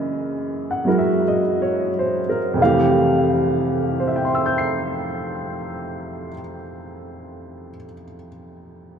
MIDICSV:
0, 0, Header, 1, 2, 480
1, 0, Start_track
1, 0, Tempo, 1219512
1, 496, Tempo, 1339286
1, 976, Tempo, 1392111
1, 977, Time_signature, 4, 2, 24, 8
1, 3179, End_track
2, 0, Start_track
2, 0, Title_t, "Upright piano"
2, 0, Program_c, 0, 0
2, 0, Control_c, 0, 64, 127
2, 0, Note_on_c, 0, 42, 48
2, 0, Note_on_c, 0, 49, 46
2, 0, Note_on_c, 0, 52, 45
2, 0, Note_on_c, 0, 58, 42
2, 0, Note_on_c, 0, 61, 45
2, 0, Note_on_c, 0, 68, 51
2, 0, Note_on_c, 0, 70, 47
2, 0, Note_on_c, 0, 75, 65
2, 278, Note_on_c, 0, 78, 33
2, 334, Note_on_c, 0, 54, 29
2, 339, Note_on_c, 0, 56, 27
2, 341, Note_off_c, 0, 70, 0
2, 342, Note_on_c, 0, 64, 28
2, 343, Note_on_c, 0, 66, 29
2, 347, Note_on_c, 0, 70, 33
2, 387, Note_on_c, 0, 76, 38
2, 417, Note_off_c, 0, 78, 0
2, 486, Note_off_c, 0, 75, 0
2, 503, Note_on_c, 0, 75, 36
2, 550, Note_off_c, 0, 76, 0
2, 625, Note_on_c, 0, 73, 34
2, 723, Note_off_c, 0, 75, 0
2, 757, Note_on_c, 0, 72, 40
2, 827, Note_off_c, 0, 73, 0
2, 861, Note_off_c, 0, 70, 0
2, 866, Note_on_c, 0, 70, 38
2, 896, Note_off_c, 0, 72, 0
2, 954, Note_on_c, 0, 41, 45
2, 965, Note_on_c, 0, 48, 42
2, 976, Note_off_c, 0, 54, 0
2, 977, Note_off_c, 0, 42, 0
2, 977, Note_on_c, 0, 57, 40
2, 978, Note_off_c, 0, 56, 0
2, 979, Note_off_c, 0, 49, 0
2, 979, Note_off_c, 0, 58, 0
2, 979, Note_off_c, 0, 61, 0
2, 980, Note_off_c, 0, 52, 0
2, 980, Note_off_c, 0, 64, 0
2, 980, Note_off_c, 0, 66, 0
2, 981, Note_off_c, 0, 68, 0
2, 982, Control_c, 0, 64, 0
2, 983, Note_on_c, 0, 77, 51
2, 985, Note_on_c, 0, 52, 42
2, 996, Note_on_c, 0, 67, 50
2, 1032, Note_off_c, 0, 70, 0
2, 1032, Control_c, 0, 64, 127
2, 1458, Note_on_c, 0, 72, 34
2, 1485, Note_on_c, 0, 76, 32
2, 1514, Note_on_c, 0, 79, 32
2, 1544, Note_on_c, 0, 84, 31
2, 1578, Note_on_c, 0, 88, 28
2, 1617, Note_on_c, 0, 91, 27
2, 1659, Note_on_c, 0, 96, 26
2, 2240, Note_off_c, 0, 41, 0
2, 2250, Note_off_c, 0, 48, 0
2, 2254, Note_off_c, 0, 77, 0
2, 2262, Note_off_c, 0, 57, 0
2, 2270, Note_off_c, 0, 52, 0
2, 2281, Note_off_c, 0, 67, 0
2, 2729, Note_off_c, 0, 72, 0
2, 2756, Note_off_c, 0, 76, 0
2, 2785, Note_off_c, 0, 79, 0
2, 2815, Note_off_c, 0, 84, 0
2, 2850, Note_off_c, 0, 88, 0
2, 2888, Note_off_c, 0, 91, 0
2, 2930, Note_off_c, 0, 96, 0
2, 3179, End_track
0, 0, End_of_file